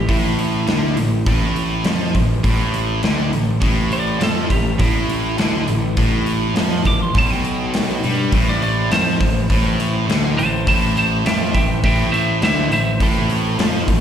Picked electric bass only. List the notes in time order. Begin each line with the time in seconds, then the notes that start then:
0.09 A1
0.68 D2
0.98 A1
1.27 A1
1.85 F2
2.15 A1
2.44 A1
3.04 D2
3.33 A1
3.62 A1
4.22 F2
4.51 A1
4.80 A1
5.39 D2
5.68 A1
5.97 A1
6.55 F2
6.85 A1
7.15 B1
8.04 G2
8.32 A1
8.92 F2
9.21 A1
9.50 A1
10.09 D2
10.39 A1
10.67 A1
11.25 F2
11.55 A1
11.84 A1
12.42 D2
12.71 A1
13.01 A1
13.59 F2
13.88 A1